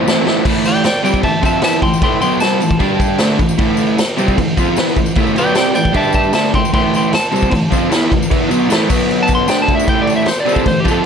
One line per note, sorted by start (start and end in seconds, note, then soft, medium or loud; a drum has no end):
0.00 0.27 C5 medium
0.06 0.23 A2 medium
0.06 0.24 E3 medium
0.06 0.25 A3 medium
0.06 0.26 C4 loud
0.06 0.27 E4 medium
0.06 snare loud
0.06 tambourine loud
0.25 0.43 A2 medium
0.25 0.44 E3 medium
0.25 0.44 A3 loud
0.25 0.45 C4 medium
0.25 0.45 E4 loud
0.25 snare loud
0.44 0.83 A2 medium
0.44 0.84 E3 loud
0.44 0.84 A3 loud
0.44 kick loud
0.44 crash loud
0.44 tambourine soft
0.44 crash medium
0.64 0.84 D5 medium
0.64 0.85 G5 medium
0.64 tambourine medium
0.64 crash medium
0.76 tambourine soft
0.84 1.03 D5 medium
0.84 1.03 G5 medium
0.84 muted overdriven electric guitar stroke medium
0.84 snare loud
0.84 tambourine loud
0.84 crash medium
1.04 1.23 C3 loud
1.04 1.23 G3 loud
1.04 1.24 C4 loud
1.04 1.23 D5 medium
1.04 1.23 G5 medium
1.04 tambourine medium
1.04 crash medium
1.14 kick medium
1.23 1.39 A2 medium
1.23 1.40 E3 medium
1.23 1.42 E5 medium
1.23 1.43 A5 medium
1.23 kick medium
1.23 tambourine soft
1.23 crash medium
1.42 1.62 F3 medium
1.42 1.62 C4 loud
1.42 1.63 F4 loud
1.42 1.63 E5 medium
1.42 kick medium
1.42 tambourine medium
1.42 crash medium
1.46 1.63 A5 medium
1.62 1.82 E3 medium
1.62 1.82 B3 medium
1.62 1.83 E4 medium
1.62 1.82 E5 medium
1.62 1.83 A5 medium
1.62 snare loud
1.62 tambourine loud
1.62 crash medium
1.82 1.98 A2 medium
1.82 1.99 E3 medium
1.82 2.02 G5 medium
1.82 2.02 C6 medium
1.82 kick medium
1.82 tambourine soft
1.82 crash medium
1.93 tambourine medium
2.02 2.21 A2 loud
2.02 2.22 E3 loud
2.02 2.22 A3 loud
2.02 2.20 G5 medium
2.02 2.20 C6 medium
2.02 kick loud
2.02 tambourine soft
2.02 crash medium
2.21 2.41 B2 medium
2.21 2.41 F#3 loud
2.21 2.42 B3 medium
2.21 2.40 G5 medium
2.21 2.40 C6 medium
2.21 tambourine medium
2.21 crash medium
2.40 2.60 C3 loud
2.40 2.61 G3 loud
2.40 2.61 C4 loud
2.40 3.55 A5 medium
2.40 snare loud
2.40 tambourine loud
2.40 crash medium
2.51 tambourine soft
2.61 2.77 A2 medium
2.61 2.78 E3 medium
2.61 tambourine medium
2.61 crash medium
2.71 kick medium
2.79 3.19 G3 medium
2.79 3.19 D4 medium
2.79 3.20 G4 loud
2.79 kick medium
2.79 tambourine soft
2.79 crash medium
3.00 kick medium
3.00 tambourine medium
3.00 crash medium
3.18 3.38 D3 loud
3.18 3.39 A3 medium
3.18 3.39 D4 loud
3.18 snare loud
3.18 tambourine loud
3.18 crash medium
3.30 snare soft
3.39 3.55 A2 medium
3.39 3.55 E3 medium
3.39 kick medium
3.39 tambourine soft
3.39 crash medium
3.49 tambourine medium
3.58 3.97 A2 loud
3.58 3.98 E3 loud
3.58 3.98 A3 loud
3.58 kick loud
3.58 tambourine soft
3.58 crash medium
3.77 tambourine medium
3.77 crash medium
3.87 tambourine soft
3.98 muted overdriven electric guitar stroke medium
3.98 snare loud
3.98 tambourine loud
3.98 crash medium
4.17 4.37 C3 medium
4.17 4.38 G3 medium
4.17 4.38 C4 medium
4.17 tambourine medium
4.17 crash medium
4.28 kick medium
4.28 tambourine soft
4.38 4.54 A2 medium
4.38 4.54 E3 medium
4.38 kick loud
4.38 tambourine soft
4.38 crash medium
4.57 4.77 F3 medium
4.57 4.77 C4 loud
4.57 4.78 F4 loud
4.57 kick medium
4.57 tambourine medium
4.57 crash medium
4.77 4.97 E3 medium
4.77 4.97 B3 loud
4.77 4.98 E4 loud
4.77 snare loud
4.77 tambourine medium
4.77 crash medium
4.89 tambourine soft
4.96 5.13 A2 medium
4.96 5.13 E3 medium
4.96 kick medium
4.96 tambourine soft
4.96 crash medium
5.06 tambourine medium
5.15 5.35 A2 medium
5.15 5.36 E3 loud
5.15 5.36 A3 loud
5.15 kick loud
5.15 tambourine soft
5.15 crash medium
5.26 tambourine soft
5.36 5.55 B2 medium
5.36 5.56 F#3 medium
5.36 5.56 B3 loud
5.36 5.55 D5 medium
5.36 5.55 G5 loud
5.36 tambourine medium
5.36 crash medium
5.47 tambourine soft
5.55 5.75 C3 medium
5.55 5.75 G3 loud
5.55 5.76 C4 loud
5.55 5.73 D5 medium
5.55 5.74 G5 medium
5.55 snare loud
5.55 tambourine loud
5.55 crash medium
5.74 5.91 A2 medium
5.74 5.92 E3 medium
5.74 5.93 D5 medium
5.74 5.95 G5 loud
5.74 tambourine medium
5.74 crash medium
5.85 kick medium
5.93 6.33 G3 medium
5.93 6.34 D4 medium
5.93 6.34 G4 loud
5.93 6.13 E5 medium
5.93 6.14 A5 medium
5.93 kick medium
5.93 tambourine soft
5.93 crash medium
6.03 tambourine soft
6.12 6.33 E5 medium
6.12 6.34 A5 medium
6.12 kick medium
6.12 tambourine medium
6.12 crash medium
6.23 tambourine soft
6.33 6.53 D3 medium
6.33 6.53 A3 loud
6.33 6.54 D4 loud
6.33 6.53 E5 medium
6.33 6.54 A5 loud
6.33 snare loud
6.33 tambourine loud
6.33 crash medium
6.44 snare soft
6.44 tambourine soft
6.53 6.69 A2 medium
6.53 6.70 E3 medium
6.53 6.72 G5 medium
6.53 6.73 C6 loud
6.53 kick medium
6.53 tambourine soft
6.53 crash medium
6.65 tambourine medium
6.72 7.11 A2 medium
6.72 7.13 E3 loud
6.72 7.13 A3 loud
6.72 6.92 G5 medium
6.72 6.93 C6 loud
6.72 kick loud
6.72 crash medium
6.93 7.13 G5 medium
6.93 7.14 C6 medium
6.93 tambourine medium
6.93 crash medium
7.05 tambourine soft
7.13 8.28 A5 loud
7.13 muted overdriven electric guitar stroke medium
7.13 snare loud
7.13 tambourine loud
7.13 crash medium
7.25 tambourine soft
7.32 7.50 C3 medium
7.32 7.51 G3 loud
7.32 7.52 C4 loud
7.32 crash medium
7.36 tambourine medium
7.43 kick medium
7.51 7.67 A2 medium
7.51 7.68 E3 medium
7.51 kick loud
7.51 tambourine soft
7.51 crash medium
7.70 7.90 F3 medium
7.70 7.91 C4 loud
7.70 7.91 F4 loud
7.70 kick medium
7.70 tambourine medium
7.70 crash medium
7.90 8.10 E3 loud
7.90 8.10 B3 loud
7.90 8.11 E4 loud
7.90 snare loud
7.90 tambourine loud
7.90 crash medium
8.03 tambourine soft
8.12 8.27 A2 medium
8.12 8.27 E3 medium
8.12 kick medium
8.12 tambourine soft
8.12 crash medium
8.22 tambourine medium
8.30 8.49 E3 medium
8.30 8.50 B3 loud
8.30 8.51 E4 loud
8.30 kick loud
8.30 crash medium
8.49 8.68 B2 medium
8.49 8.70 F#3 loud
8.49 8.70 B3 loud
8.49 tambourine medium
8.49 crash medium
8.62 tambourine soft
8.69 8.88 A2 loud
8.69 8.89 E3 loud
8.69 8.90 A3 loud
8.69 snare loud
8.69 tambourine loud
8.69 crash medium
8.88 9.47 B2 medium
8.88 9.48 F#3 loud
8.88 9.48 B3 loud
8.88 kick loud
8.88 tambourine medium
8.88 crash loud
8.99 tambourine soft
9.09 tambourine soft
9.09 crash medium
9.23 9.34 A5 loud
9.28 kick medium
9.28 tambourine medium
9.28 crash medium
9.35 9.48 C6 loud
9.47 9.86 D3 medium
9.47 9.86 A3 medium
9.47 9.87 D4 loud
9.47 9.61 G5 loud
9.47 snare loud
9.47 tambourine loud
9.47 crash medium
9.60 9.75 A5 medium
9.60 snare soft
9.68 kick medium
9.68 tambourine soft
9.68 crash medium
9.75 9.88 E5 medium
9.80 tambourine medium
9.86 10.25 A2 medium
9.86 10.26 E3 medium
9.86 10.26 A3 loud
9.86 10.01 G5 loud
9.86 kick loud
9.86 crash medium
10.02 10.14 D5 medium
10.07 tambourine medium
10.07 crash medium
10.16 10.28 E5 loud
10.16 tambourine soft
10.26 10.40 C5 loud
10.26 muted overdriven electric guitar stroke medium
10.26 snare loud
10.26 tambourine loud
10.26 crash medium
10.40 10.53 D5 loud
10.45 10.65 C3 loud
10.45 10.66 G3 loud
10.45 10.66 C4 loud
10.45 tambourine medium
10.45 crash medium
10.53 10.66 A4 loud
10.53 kick medium
10.66 10.82 A2 medium
10.66 10.82 E3 medium
10.66 10.79 C5 loud
10.66 kick loud
10.66 tambourine soft
10.66 crash medium
10.80 10.91 G4 loud
10.85 11.04 F3 loud
10.85 11.05 C4 loud
10.85 11.05 F4 loud
10.85 kick medium
10.85 tambourine medium
10.85 crash medium
10.91 11.04 A4 loud